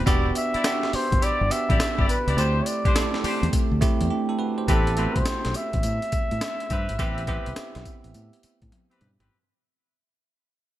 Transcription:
0.06 E1 B3 D4 E4 F#4 G4 D5, kick, closed hi-hat, tambourine
0.35 E5, closed hi-hat, tambourine
0.54 E4 G4 D5, muted fingered electric bass stroke, closed hi-hat
0.64 B3 D4 F#4 G4, snare, closed hi-hat, tambourine
0.83 snare
0.93 C5, muted fingered electric bass stroke, open hi-hat
1.12 G1, kick, closed hi-hat
1.22 E4 G4 D5, closed hi-hat, tambourine
1.41 G1
1.50 B3 D4 F#4 G4 E5, closed hi-hat, tambourine
1.69 A1 E4 G4 D5, kick, closed hi-hat
1.80 muted fingered electric bass stroke, snare, closed hi-hat, tambourine
1.98 G1 E4 G4 D5, kick
2.09 B4, closed hi-hat, tambourine
2.27 C#2 E4 G4 D5, closed hi-hat
2.37 D2 A3 C4 D4 E4 G4 C5, closed hi-hat, tambourine
2.62 C#5
2.66 D5, closed hi-hat, tambourine
2.85 D4 G4 C5, muted fingered electric bass stroke, kick, closed hi-hat
2.95 A3 C4 E4 A4, snare, closed hi-hat, tambourine
3.14 snare
3.24 D4 G4 C5, muted fingered electric bass stroke, open hi-hat
3.43 E2, closed hi-hat
3.53 muted fingered electric bass stroke, kick, closed hi-hat, tambourine
3.71 D2
3.81 A3 C4 E4 G4, kick, closed hi-hat, tambourine
4.01 E2, closed hi-hat
4.11 D4 G4
4.29 E4 A4
4.39 F#4 B4
4.58 G4 C5
4.68 A1 B3 C4 E4 G4 A4 B4, kick, closed hi-hat, tambourine
4.87 closed hi-hat
4.97 A3 C4 E4 F#4 G4 B4, closed hi-hat
5.16 C2 C5, kick, closed hi-hat
5.25 snare, closed hi-hat, tambourine
5.45 B1, snare, closed hi-hat
5.54 E5, closed hi-hat, tambourine
5.73 A1, kick, closed hi-hat
5.83 A2, closed hi-hat, tambourine
6.02 closed hi-hat
6.12 muted fingered electric bass stroke, kick, closed hi-hat, tambourine
6.31 A2, closed hi-hat
6.41 snare, closed hi-hat, tambourine
6.60 closed hi-hat
6.70 G2 C4 G4 B4, kick, closed hi-hat, tambourine
6.89 G#1, closed hi-hat
6.98 A1 B3 C4 E4 G4 B4, kick, closed hi-hat, tambourine
7.18 closed hi-hat
7.27 B3 C4 E4 G4 B4, kick, closed hi-hat
7.46 C2, closed hi-hat
7.56 muted fingered electric bass stroke, snare, closed hi-hat, tambourine
7.75 B1, snare, closed hi-hat
7.85 kick, closed hi-hat, tambourine
8.04 A1, closed hi-hat
8.14 A2, closed hi-hat, tambourine
8.33 closed hi-hat
8.43 muted fingered electric bass stroke, closed hi-hat, tambourine
8.62 A2, kick, closed hi-hat
8.72 closed hi-hat, high tom
8.90 C4 G4 B4, closed hi-hat
9.01 G2, closed hi-hat, mid tom
9.20 G#1 C4 G4 B4, closed hi-hat, floor tom

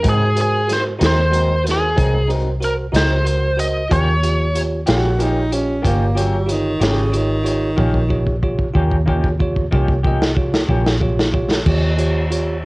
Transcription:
0.03 G#2 F#3 C4 D#4 F#4 A#4 C5, kick, closed hi-hat
0.09 G#4
0.35 F#4 A#4 C5, closed hi-hat
0.41 G#4
0.67 F#4 A#4 C5, snare, closed hi-hat
0.73 C5
0.99 D#2 F#3 C4 D#4 F#4 A#4 C5, closed hi-hat
1.03 C5, snare
1.31 G#2 F#3 C4 D#4 F#4 A#4 C5, closed hi-hat
1.64 F#4 A#4 C5, closed hi-hat
1.68 G#4, snare
1.95 C2 G#2 F#3 C4 D#4 F#4 A#4 C5, kick, closed hi-hat
2.28 F#3 C4 D#4 F#4 A#4 C5, closed hi-hat
2.60 F#4 A#4 C5, closed hi-hat
2.65 A#4
2.92 C#2 F#3 C4 D#4 F#4 A#4 D#5, closed hi-hat
2.96 C5, snare
3.24 F#4 A#4 C5, closed hi-hat
3.57 F#4 A#4 C5 D#5, closed hi-hat
3.89 D#2 D#3 A#3 C#4 F4 G4 C#5, kick, closed hi-hat
4.23 F4 G4 C#5, closed hi-hat
4.55 F4 G4 C#5, closed hi-hat
4.86 A#1 A#3 C#4 F4 F#4 G4 C#5, snare, closed hi-hat
5.18 D#3 A#3 C#4 F4 G4 C#5, closed hi-hat
5.22 D#4
5.51 C#4 F4 G4 C#5, closed hi-hat
5.82 G1 D#3 A#3 C#4 F4 G4 C#5, kick, closed hi-hat
5.86 A#3
6.15 F#3 A#3 C#4 F4 G4 C#5, closed hi-hat
6.46 F4 G4 C#5, closed hi-hat
6.51 D#3
6.80 G#1 C#3 A#3 C#4 F4 G4 C#5, snare, closed hi-hat
7.12 F4 G4 C#5, closed hi-hat
7.17 D#3
7.43 F4 G4 C#5, closed hi-hat
7.76 A#1 D#3 A#3 C#4 F4 G4 C#5, kick
7.94 kick
8.09 F4 G4 C#5, kick
8.27 kick
8.43 F4 G4 C#5, kick
8.59 kick
8.74 D#2 A#3 C#4 F4 G4 C#5, kick
8.91 kick
9.06 D#3 A#3 C#4 F4 G4 C#5, kick
9.24 kick
9.39 F4 G4 C#5, kick
9.56 kick
9.71 C2 D#3 A#3 C#4 F4 G4 C#5, kick
9.88 kick
10.03 A#3 C#4 F4 G4 D#5, kick
10.22 snare
10.36 F4 G4 C#5, kick
10.54 snare
10.69 A#1 A#3 C#4 F4 G4 C#5, kick
10.87 snare
11.01 F4 G4 C#5, kick
11.19 snare
11.33 F4 G4 C#5, kick
11.51 snare
11.66 D#2 F4 G4 C#5, kick, crash
11.98 F4 G4 C#5, closed hi-hat
12.30 F4 G4 C#5, closed hi-hat

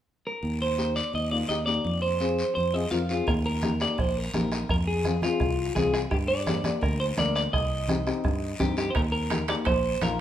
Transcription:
0.27 A#4
0.43 D#2, long guiro
0.62 C5
0.78 A#3 D#4 G4, short guiro
0.96 D5, short guiro
1.13 D#2 D#5, long guiro
1.31 A#3 D#4 F4 D5
1.49 D#2 A#3 D#4 G4 D#5, short guiro
1.66 A#3 D#4 G4 D5, short guiro
1.85 F2, long guiro
2.02 C5
2.20 C4 F4 G#4, short guiro
2.38 short guiro
2.55 F2 C5, long guiro
2.73 C4 F4 G#4 D#5
2.91 F2 C4 F4 A#4 F5, short guiro
3.09 C4 F4 G#4, short guiro
3.27 D#2 A#4, bombo low, bombo rim, long guiro
3.46 A#4
3.62 A#3 D#4 G4, bombo rim, high conga, short guiro
3.80 A#3 D#4 G4 D5, bombo rim, short guiro
3.98 A#1 C5, bombo low, bombo rim, long guiro
4.18 A#4
4.34 A#1 A#3 D#4 G4, bombo rim, high conga, short guiro
4.52 bombo rim, short guiro
4.69 F2 A#4, bombo low, bombo rim, long guiro
4.87 G#4
5.04 C4 F4 G#4, bombo rim, high conga, short guiro
5.22 C4 F4 G#4, bombo rim, high conga, short guiro
5.40 C2, bombo low, bombo rim, long guiro
5.75 C2 C4 F4 G#4, bombo low, bombo rim, high conga, short guiro
5.93 G#4, bombo rim, short guiro
6.11 G2 G4, bombo low, bombo rim, long guiro
6.28 D5
6.47 A#3 D4 G4, bombo rim, high conga, short guiro
6.64 A#3 D4 G4, bombo rim, high conga, short guiro
6.81 D2 A#4, bombo low, bombo rim, long guiro
7.00 C5
7.17 D2 A#3 D4 A#4 D5, bombo rim, high conga, short guiro
7.35 D5, bombo rim, short guiro
7.53 C2 D#5, bombo low, bombo rim, long guiro
7.88 C4 D#4 G4, bombo rim, high conga, short guiro
8.06 C4 D#4 G4, bombo rim, short guiro
8.24 G2, bombo low, bombo rim, long guiro
8.59 G2 C4 D#4 G4, bombo low, bombo rim, high conga, short guiro
8.77 G4, bombo rim, short guiro
8.90 C5
8.95 D#2 A#4, bombo low, bombo rim, high timbale, long guiro
9.12 A#4
9.30 A#3 D#4 G4, bombo rim, high conga, high timbale, short guiro
9.48 A#3 D#4 G4 D5, bombo rim, high timbale, short guiro
9.65 A#1 C5, bombo low, bombo rim, high timbale, long guiro
10.01 A#1 A#3 D#4 F4 A#4, bombo rim, high conga, high timbale, short guiro

